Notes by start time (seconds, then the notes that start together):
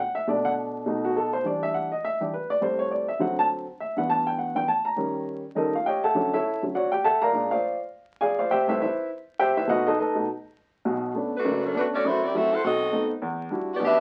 0.00 F#5
0.15 E5
0.27 B2 A3 D4 D5
0.45 F#5
0.86 B2 A3 D#4
1.05 F#4
1.17 A4
1.33 C5
1.44 E3 G3 D4 D5
1.63 E5
1.74 F#5
1.92 D#5
2.05 E5
2.20 E3 G3 D4 G4
2.34 B4
2.50 D5
2.61 A2 G3 C4 C5
2.79 C#5
2.91 D5
3.08 E5
3.19 D3 F#3 C4 F#5
3.39 A5
3.80 E5
3.96 G2 E3 B3 F#5
4.10 A5
4.27 G5
4.39 F#5
4.55 G2 E3 B3 G5
4.68 A5
4.85 A#5
4.96 D#3 G3 C#4
5.55 D#3 G3 C#4 D#4 A4 A#4 D#5
5.75 F4 F5
5.86 G4 C#5 D#5 G5
6.04 A4 E5 F#5 A5
6.15 D3 F#3 C#4
6.34 E4 A4 C#5 E5
6.63 D3 F#3 C#4
6.75 F#4 C#5 D5 F#5
6.92 G4 G5
7.04 A4 E5 F#5 A5
7.22 A#4 D5 F5 A#5
7.33 A#2 G#3 D4
7.51 F4 C5 D5 F5
8.21 G#4 D5 F5 G#5
8.39 F4 C5 D5 F5
8.51 G4 C5 E5 G5
8.67 A2 G3 C4 E4 B4 C5 E5
8.82 E4 B4 C5 E5
9.39 G4 C5 E5 G5
9.57 E4 B4 C5 E5
9.67 B2 A3 D#4 F#4 B4 D#5 F#5
9.87 D#4 A4 B4 D#5
9.99 D#4 A4 B4 D#5
10.15 B2 A3 D#4
10.85 B1 B2
11.14 A3 B3 C#4 D4
11.36 A3 D4 F#4 B4
11.45 F#1 F#2
11.65 F#3 C#4 D4 A4
11.75 A3 B3 C#4 D4 F#4 B4
11.94 A3 C#4 F#4 D5
12.05 F#2 A3 E4 F#4 C5
12.23 C4 E4 G4 D5
12.34 F#3 A3 C4 E4 F#4 A4 E5
12.53 E4 A4 C5 F#5
12.64 B1 C4 F#4 A4 D#5
12.92 A3 B3 C4 D#4
13.22 E2
13.50 G3 D4 E4 F#4
13.74 B3 F#4 G4 D5
13.80 B1 B2
13.85 D4 G4 B4 E5